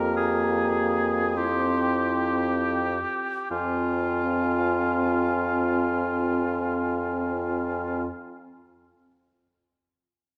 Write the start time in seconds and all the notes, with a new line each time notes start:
Already playing: F2 A#3 G4 A#4 A#5
0.17 G#4
1.36 C4 E4 G4 C6
3.50 F2 C4 F4 G#5